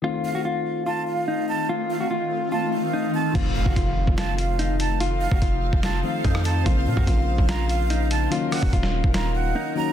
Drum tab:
CC |----------------|----------------|x---------------|----------------|
HH |----------------|----------------|x---x---x-x-x-x-|x---x---x---x-x-|
SD |----------------|----------------|--------o-------|--------o----r--|
BD |----------------|----------------|o--oo--o--------|---oo--o----o---|

CC |----------------|----------------|
HH |x---x---x-x-x-x-|x-o-x---x-------|
SD |--------o-------|--r--o--o-------|
BD |o--oo--o--------|---oo--o--------|